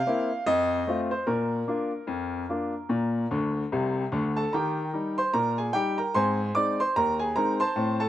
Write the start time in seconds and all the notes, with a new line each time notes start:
Already playing: F5
0.07 A#3 C4 E4
0.46 F2 D#5
0.87 A3 C4 F4
1.11 C5
1.27 A#2 A#4
1.68 A#3 D4 F4
2.07 F2
2.49 A#3 D4 F4
2.89 A#2
3.31 D2 D3
3.72 C2 C3
4.12 D2 D3
4.37 A4 A5
4.53 D#3 G4 A#4 G5 A#5
4.93 G3 D#4
5.18 C5 C6
5.34 A#2 A#4 A#5
5.58 G#4 G#5
5.73 G3 D#4 G4 G5
5.98 A#4 A#5
6.14 G#2 C4 C5 G#5 C6
6.55 G#3 C4 D#4 D5 D6
6.80 C5 C6
6.96 D#2 A#4 A#5
7.19 G#4 G#5
7.36 G#3 C4 D#4 A#4 A#5
7.60 C5 A5 C6
7.76 A2 C4
8.00 A4 A5